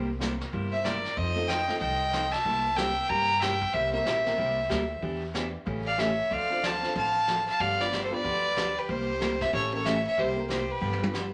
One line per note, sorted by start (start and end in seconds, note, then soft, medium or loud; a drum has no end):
0.00 0.40 C2 medium
0.19 0.32 C3 medium
0.19 0.32 G3 medium
0.19 0.38 A#3 medium
0.19 0.32 A#3 medium
0.19 0.38 C4 medium
0.19 0.38 E4 medium
0.19 0.32 E4 medium
0.19 0.38 G4 medium
0.19 0.32 G4 medium
0.19 0.39 A#4 medium
0.19 snare medium
0.19 hi-hat pedal medium
0.41 snare soft
0.52 1.04 G1 medium
0.52 0.73 C3 medium
0.52 0.73 G3 medium
0.52 0.74 A#3 medium
0.52 0.74 E4 medium
0.52 0.74 G4 medium
0.52 brush sweep soft
0.52 kick soft
0.72 0.85 C5 medium
0.72 0.86 E5 medium
0.84 0.95 C3 medium
0.84 0.96 G3 medium
0.84 0.96 A#3 medium
0.84 0.96 E4 medium
0.84 0.96 G4 medium
0.84 1.17 A#4 medium
0.84 1.18 D5 medium
0.84 snare medium
0.84 hi-hat pedal medium
1.05 snare soft
1.16 1.68 F2 medium
1.16 1.37 F3 soft
1.16 1.38 C4 medium
1.16 1.38 D#4 medium
1.16 1.38 A4 medium
1.16 1.49 C5 medium
1.16 1.50 D#5 medium
1.16 brush sweep soft
1.16 kick soft
1.35 1.47 A3 medium
1.35 1.47 C4 medium
1.35 1.47 D#4 medium
1.35 1.48 F4 medium
1.35 1.48 A4 medium
1.48 1.60 F3 medium
1.48 1.60 C4 medium
1.48 1.60 D#4 medium
1.48 1.60 A4 medium
1.48 1.80 D#5 medium
1.48 1.79 G5 medium
1.48 snare medium
1.48 hi-hat pedal medium
1.68 1.79 A3 medium
1.68 1.79 C4 medium
1.68 1.79 D#4 medium
1.68 1.80 F4 medium
1.68 1.80 A4 medium
1.68 snare soft
1.79 2.32 C2 medium
1.79 2.02 F3 soft
1.79 2.02 C4 medium
1.79 2.02 D#4 medium
1.79 2.02 A4 medium
1.79 2.33 D#5 medium
1.79 2.33 G5 loud
1.79 brush sweep soft
1.79 kick soft
2.13 2.24 F3 medium
2.13 2.24 C4 medium
2.13 2.25 D#4 medium
2.13 2.25 A4 medium
2.13 snare medium
2.13 hi-hat pedal medium
2.31 2.76 E5 medium
2.31 2.78 A5 loud
2.31 snare soft
2.45 2.97 C2 medium
2.45 2.66 C3 medium
2.45 2.66 G3 medium
2.45 2.66 A#3 medium
2.45 2.66 E4 medium
2.45 2.66 G4 medium
2.45 brush sweep medium
2.45 kick soft
2.76 2.88 C3 medium
2.76 2.89 G3 medium
2.76 3.25 A#3 medium
2.76 2.88 A#3 medium
2.76 3.25 C4 medium
2.76 3.25 E4 medium
2.76 2.89 E4 medium
2.76 2.89 G4 medium
2.76 3.26 G4 medium
2.76 3.26 A#4 medium
2.76 3.09 E5 medium
2.76 3.11 G5 loud
2.76 snare medium
2.76 hi-hat pedal medium
3.07 3.61 G2 medium
3.07 3.30 C3 medium
3.07 3.30 G3 medium
3.07 3.30 A#3 medium
3.07 3.31 E4 medium
3.07 3.31 G4 medium
3.07 3.41 G5 loud
3.07 3.43 A#5 loud
3.07 brush sweep soft
3.07 kick soft
3.40 3.53 C3 medium
3.40 3.53 G3 medium
3.40 3.53 A#3 medium
3.40 3.53 E4 medium
3.40 3.53 G4 medium
3.40 3.74 E5 medium
3.40 3.75 G5 loud
3.40 snare medium
3.40 hi-hat pedal medium
3.62 kick medium
3.72 4.00 C2 medium
3.72 3.94 C3 medium
3.72 3.94 G3 medium
3.72 3.95 A#3 medium
3.72 3.95 E4 medium
3.72 3.95 G4 medium
3.72 3.91 C5 medium
3.72 3.92 E5 medium
3.72 brush sweep medium
3.72 kick soft
3.92 4.04 A#3 medium
3.92 4.04 C4 medium
3.92 4.04 E4 medium
3.92 4.05 G4 medium
3.92 4.05 A#4 medium
3.92 4.98 C5 medium
3.92 5.18 E5 medium
4.05 4.33 A#1 medium
4.05 4.17 C3 medium
4.05 4.17 G3 medium
4.05 4.17 A#3 medium
4.05 4.17 E4 medium
4.05 4.17 G4 medium
4.05 snare medium
4.05 hi-hat pedal medium
4.25 4.37 A#3 medium
4.25 4.37 C4 medium
4.25 4.37 E4 medium
4.25 4.37 G4 medium
4.25 4.37 A#4 medium
4.25 snare soft
4.37 4.66 C2 medium
4.37 4.59 C3 medium
4.37 4.59 G3 medium
4.37 4.59 A#3 medium
4.37 4.59 E4 medium
4.37 4.59 G4 medium
4.37 brush sweep soft
4.37 kick soft
4.69 4.97 D2 medium
4.69 4.81 C3 medium
4.69 4.81 G3 medium
4.69 4.81 A#3 medium
4.69 4.81 E4 medium
4.69 4.81 G4 medium
4.69 snare medium
4.69 hi-hat pedal soft
5.01 5.54 E2 medium
5.01 5.23 E3 soft
5.01 5.20 B3 medium
5.01 5.23 B3 medium
5.01 5.20 D4 medium
5.01 5.23 D4 medium
5.01 5.20 E4 medium
5.01 5.21 G4 medium
5.01 5.23 G4 medium
5.01 5.21 B4 medium
5.01 brush sweep soft
5.01 kick soft
5.34 5.45 E3 medium
5.34 5.52 B3 medium
5.34 5.46 B3 medium
5.34 5.46 D4 medium
5.34 5.52 D4 medium
5.34 5.53 E4 medium
5.34 5.46 G4 medium
5.34 5.53 G4 medium
5.34 5.53 D5 medium
5.34 snare medium
5.34 hi-hat pedal medium
5.66 6.18 A1 loud
5.66 5.87 C#3 medium
5.66 5.87 E3 medium
5.66 5.87 A3 medium
5.66 5.87 C#4 medium
5.66 5.87 G4 medium
5.66 brush sweep soft
5.66 kick soft
5.86 6.00 D5 medium
5.86 6.01 F5 medium
5.98 6.10 C#3 medium
5.98 6.10 E3 medium
5.98 6.10 A3 medium
5.98 6.10 C#4 medium
5.98 6.10 G4 medium
5.98 6.33 C#5 medium
5.98 6.34 E5 medium
5.98 snare medium
5.98 hi-hat pedal medium
6.30 6.83 D2 medium
6.30 6.51 D3 medium
6.30 6.52 F3 medium
6.30 6.52 C4 medium
6.30 6.52 D4 medium
6.30 6.52 A4 medium
6.30 6.66 D5 medium
6.30 6.67 F5 loud
6.30 brush sweep medium
6.30 kick soft
6.50 6.62 C4 medium
6.50 6.62 D4 medium
6.50 6.62 F4 medium
6.50 6.62 A4 medium
6.50 6.63 C5 medium
6.63 6.74 D3 medium
6.63 6.75 F3 medium
6.63 6.75 C4 medium
6.63 6.75 D4 medium
6.63 6.75 A4 medium
6.63 6.95 F5 medium
6.63 6.97 A5 loud
6.63 snare medium
6.63 hi-hat pedal medium
6.82 6.94 C4 medium
6.82 6.94 D4 medium
6.82 6.94 F4 medium
6.82 6.95 A4 medium
6.82 6.95 C5 medium
6.82 snare soft
6.95 7.47 A1 medium
6.95 7.16 D3 medium
6.95 7.16 F3 medium
6.95 7.16 C4 medium
6.95 7.16 D4 medium
6.95 7.16 A4 medium
6.95 7.44 F5 medium
6.95 7.45 A5 loud
6.95 brush sweep soft
6.95 kick soft
7.27 7.39 D3 medium
7.27 7.39 F3 medium
7.27 7.39 C4 medium
7.27 7.39 D4 medium
7.27 7.39 A4 medium
7.27 snare medium
7.27 hi-hat pedal medium
7.48 7.63 F5 medium
7.48 7.62 A5 loud
7.48 snare soft
7.60 8.12 G1 medium
7.60 7.81 D3 medium
7.60 7.81 F3 medium
7.60 7.81 B3 medium
7.60 7.81 D4 medium
7.60 7.81 G4 medium
7.60 7.83 D5 medium
7.60 7.82 F5 loud
7.60 brush sweep soft
7.60 kick soft
7.79 7.90 B3 medium
7.79 7.90 D4 medium
7.79 7.91 F4 medium
7.79 7.91 G4 medium
7.79 7.91 B4 medium
7.79 8.04 B4 medium
7.79 8.03 D5 loud
7.79 snare soft
7.91 8.03 D3 medium
7.91 8.03 F3 medium
7.91 8.03 B3 medium
7.91 8.03 D4 medium
7.91 8.04 G4 medium
7.91 snare medium
7.91 hi-hat pedal medium
8.04 8.15 A4 medium
8.04 8.15 C5 medium
8.10 8.22 B3 medium
8.10 8.22 D4 medium
8.10 8.23 F4 medium
8.10 8.23 G4 medium
8.10 8.23 B4 loud
8.10 8.79 B4 medium
8.10 8.80 D5 loud
8.24 8.76 D2 medium
8.24 8.45 D3 medium
8.24 8.45 F3 medium
8.24 8.45 B3 medium
8.24 8.45 D4 medium
8.24 8.45 G4 medium
8.24 brush sweep soft
8.24 kick soft
8.56 8.67 D3 medium
8.56 8.68 F3 medium
8.56 8.68 B3 medium
8.56 8.68 D4 medium
8.56 8.68 G4 medium
8.56 snare medium
8.56 hi-hat pedal medium
8.77 8.90 G4 medium
8.77 8.92 B4 medium
8.88 9.40 C2 medium
8.88 9.09 C3 medium
8.88 9.09 G3 medium
8.88 9.09 A#3 medium
8.88 9.09 E4 medium
8.88 9.10 G4 medium
8.88 9.44 G4 medium
8.88 9.43 C5 medium
8.88 brush sweep soft
8.88 kick soft
9.19 9.32 C3 medium
9.19 9.32 G3 medium
9.19 9.52 A#3 medium
9.19 9.32 A#3 medium
9.19 9.53 C4 medium
9.19 9.53 E4 medium
9.19 9.32 E4 medium
9.19 9.32 G4 medium
9.19 9.53 G4 medium
9.19 9.53 A#4 medium
9.19 snare medium
9.19 hi-hat pedal soft
9.41 9.54 C5 medium
9.41 9.53 E5 medium
9.41 kick medium
9.41 snare soft
9.53 10.05 A1 loud
9.53 9.74 C#3 medium
9.53 9.74 E3 medium
9.53 9.74 A3 medium
9.53 9.74 C#4 medium
9.53 9.74 G4 medium
9.53 9.73 A4 medium
9.53 9.72 C#5 medium
9.53 brush sweep soft
9.53 kick soft
9.72 9.83 A#3 medium
9.72 9.84 C#4 medium
9.72 9.84 E4 medium
9.72 9.84 G4 medium
9.72 9.88 A4 medium
9.72 9.84 A#4 medium
9.72 9.87 C#5 medium
9.85 9.96 C#3 medium
9.85 9.96 E3 medium
9.85 9.97 A3 medium
9.85 9.97 C#4 medium
9.85 9.97 G4 medium
9.85 10.06 C#5 medium
9.85 10.05 E5 medium
9.85 snare medium
9.85 hi-hat pedal medium
10.07 10.20 C#5 medium
10.07 10.20 E5 medium
10.17 10.69 C2 medium
10.17 10.38 C3 medium
10.17 10.38 G3 medium
10.17 10.38 A#3 medium
10.17 10.38 E4 medium
10.17 10.39 G4 medium
10.17 10.50 G4 medium
10.17 10.49 C5 medium
10.17 brush sweep soft
10.17 kick soft
10.36 10.48 A#3 medium
10.36 10.48 C4 medium
10.36 10.48 E4 medium
10.36 10.49 G4 medium
10.36 10.49 A#4 medium
10.49 10.60 C3 medium
10.49 10.60 G3 medium
10.49 10.61 A#3 medium
10.49 10.61 E4 medium
10.49 10.61 G4 medium
10.49 10.70 G4 medium
10.49 10.72 C5 medium
10.49 snare medium
10.49 hi-hat pedal medium
10.70 11.14 G4 medium
10.70 11.14 B4 medium
10.81 11.33 G1 loud
10.81 11.02 D3 medium
10.81 11.02 F3 medium
10.81 11.02 B3 medium
10.81 11.02 D4 medium
10.81 11.02 G4 medium
10.93 high tom medium
11.00 11.12 B3 medium
11.00 11.12 D4 medium
11.00 11.13 F4 medium
11.00 11.13 G4 medium
11.00 11.13 B4 medium
11.00 high tom medium
11.13 11.25 D3 medium
11.13 11.25 F3 medium
11.13 11.25 B3 medium
11.13 11.25 D4 medium
11.13 11.25 G4 medium
11.13 snare medium
11.13 hi-hat pedal medium